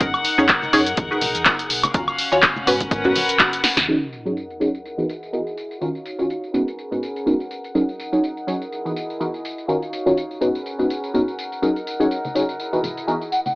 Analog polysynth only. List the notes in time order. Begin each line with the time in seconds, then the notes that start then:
0.00 C#4 D#4 G#4 A#4
0.38 C#4 D#4 G#4 C#5
0.73 C#4 D#4 G#4 C#5
1.11 D#4 F#4 G#4 B4
1.46 D#4 F#4 G#4 A#4
1.94 C#4 F4 F#4 A#4
2.32 C#4 F4 F#4 C#5
2.67 B3 C#4 F#4 B4
3.05 B3 C#4 F#4 B4
3.40 B3 C#4 F#4 A#4
3.88 F#3 C#4 D#4 G#4 A#4
4.25 F#3 C#4 D#4 G#4 C#5
4.60 F#3 C#4 D#4 G#4 C#5
4.98 E3 B3 D#4 F#4 G#4 B4
5.33 E3 B3 D#4 F#4 G#4 A#4
5.81 D#3 C#4 F4 F#4 A#4
6.18 D#3 C#4 F4 F#4 C#5
6.54 G#2 B3 C#4 D#4 F#4 B4
6.91 G#2 B3 C#4 D#4 F#4 B4
7.26 G#2 B3 C#4 D#4 F#4 A#4
7.75 F#3 C#4 D#4 G#4 A#4
8.12 F#3 C#4 D#4 G#4 C#5
8.47 F#3 C#4 D#4 G#4 C#5
8.85 E3 B3 D#4 F#4 G#4 B4
9.20 E3 B3 D#4 F#4 G#4 A#4
9.68 D#3 C#4 F4 F#4 A#4
10.06 D#3 C#4 F4 F#4 C#5
10.41 G#2 B3 C#4 D#4 F#4 B4
10.79 G#2 B3 C#4 D#4 F#4 B4
11.14 G#2 B3 C#4 D#4 F#4 A#4
11.62 F#3 C#4 D#4 G#4 A#4
12.00 F#3 C#4 D#4 G#4 C#5
12.35 F#3 C#4 D#4 G#4 C#5
12.73 E3 B3 D#4 F#4 G#4 B4
13.07 E3 B3 D#4 F#4 G#4 A#4